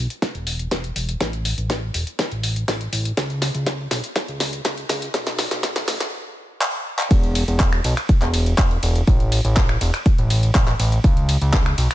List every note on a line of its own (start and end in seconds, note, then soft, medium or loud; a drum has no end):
0.10 closed hi-hat medium
0.22 kick loud
0.22 snare soft
0.22 closed hi-hat medium
0.35 0.67 E1 medium
0.35 closed hi-hat soft
0.47 open hi-hat loud
0.59 closed hi-hat medium
0.71 0.91 E1 medium
0.71 kick loud
0.71 snare medium
0.71 closed hi-hat medium
0.84 closed hi-hat soft
0.96 1.15 E1 medium
0.96 open hi-hat medium
1.09 closed hi-hat medium
1.21 1.54 A1 loud
1.21 kick loud
1.21 snare medium
1.21 closed hi-hat medium
1.33 closed hi-hat soft
1.45 open hi-hat loud
1.58 1.90 A1 medium
1.58 closed hi-hat medium
1.70 kick loud
1.70 snare medium
1.70 closed hi-hat medium
1.94 2.04 E1 medium
1.94 open hi-hat loud
2.07 closed hi-hat medium
2.19 kick loud
2.19 snare medium
2.19 closed hi-hat medium
2.31 2.64 A1 medium
2.31 closed hi-hat soft
2.43 open hi-hat loud
2.56 closed hi-hat medium
2.68 2.88 A1 medium
2.68 kick loud
2.68 snare medium
2.68 closed hi-hat medium
2.81 closed hi-hat soft
2.93 3.12 A1 medium
2.93 open hi-hat loud
3.05 closed hi-hat medium
3.17 3.50 C#2 loud
3.17 kick loud
3.17 snare medium
3.17 closed hi-hat medium
3.30 closed hi-hat soft
3.42 snare medium
3.42 open hi-hat loud
3.54 3.87 C#2 medium
3.54 closed hi-hat medium
3.66 kick loud
3.66 snare medium
3.66 closed hi-hat medium
3.91 4.01 B1 medium
3.91 snare medium
3.91 open hi-hat loud
4.04 closed hi-hat medium
4.16 kick loud
4.16 snare medium
4.16 closed hi-hat medium
4.28 4.61 C#2 medium
4.28 closed hi-hat soft
4.40 snare medium
4.40 open hi-hat loud
4.53 closed hi-hat medium
4.65 4.84 C#2 medium
4.65 kick loud
4.65 snare medium
4.65 closed hi-hat medium
4.78 closed hi-hat soft
4.89 5.09 C#2 medium
4.89 snare medium
4.89 open hi-hat loud
5.02 closed hi-hat medium
5.14 5.47 B1 loud
5.14 kick loud
5.14 snare medium
5.14 closed hi-hat medium
5.27 snare medium
5.27 closed hi-hat soft
5.39 snare medium
5.39 open hi-hat loud
5.51 5.84 B1 medium
5.51 snare medium
5.51 closed hi-hat medium
5.63 kick loud
5.63 snare loud
5.63 closed hi-hat medium
5.76 snare medium
5.88 5.98 A1 medium
5.88 snare loud
5.88 open hi-hat medium
6.00 snare medium
6.00 closed hi-hat medium
6.62 clap loud
6.99 clap medium
7.11 7.44 E1 loud
7.11 kick loud
7.11 closed hi-hat medium
7.11 ride medium
7.23 closed hi-hat soft
7.35 open hi-hat loud
7.35 ride medium
7.48 7.80 E1 medium
7.48 closed hi-hat medium
7.60 kick loud
7.60 clap loud
7.60 closed hi-hat medium
7.60 ride medium
7.73 finger snap medium
7.84 7.95 B1 medium
7.84 open hi-hat medium
7.84 ride medium
7.97 finger snap medium
7.97 closed hi-hat medium
8.09 kick loud
8.09 closed hi-hat medium
8.09 ride medium
8.22 8.54 E1 medium
8.22 clap soft
8.22 closed hi-hat soft
8.34 open hi-hat loud
8.34 ride medium
8.46 closed hi-hat medium
8.58 8.78 E1 medium
8.58 kick loud
8.58 clap loud
8.58 closed hi-hat medium
8.58 ride medium
8.71 closed hi-hat soft
8.83 9.02 E1 medium
8.83 open hi-hat medium
8.83 ride medium
8.96 closed hi-hat medium
9.07 9.40 A1 loud
9.07 kick loud
9.07 closed hi-hat medium
9.07 ride medium
9.20 closed hi-hat soft
9.32 open hi-hat loud
9.32 ride medium
9.45 9.77 A1 medium
9.45 closed hi-hat medium
9.57 kick loud
9.57 clap loud
9.57 closed hi-hat medium
9.57 ride medium
9.69 finger snap medium
9.81 9.91 E1 medium
9.81 open hi-hat medium
9.81 ride medium
9.94 finger snap medium
9.94 closed hi-hat medium
10.06 kick loud
10.06 closed hi-hat medium
10.06 ride medium
10.18 10.51 A1 medium
10.18 closed hi-hat soft
10.30 open hi-hat loud
10.30 ride medium
10.43 closed hi-hat medium
10.55 10.75 A1 medium
10.55 kick loud
10.55 clap loud
10.55 closed hi-hat medium
10.55 ride medium
10.68 clap soft
10.68 closed hi-hat soft
10.80 10.99 A1 medium
10.80 open hi-hat loud
10.80 ride medium
10.92 closed hi-hat medium
11.04 11.37 C#2 loud
11.04 kick loud
11.04 closed hi-hat medium
11.04 ride medium
11.17 closed hi-hat soft
11.29 open hi-hat loud
11.29 ride medium
11.41 11.74 C#2 medium
11.41 closed hi-hat medium
11.53 kick loud
11.53 clap loud
11.53 closed hi-hat medium
11.53 ride medium
11.66 finger snap medium
11.78 11.88 B1 medium
11.78 open hi-hat loud
11.78 ride medium
11.91 finger snap medium
11.91 closed hi-hat medium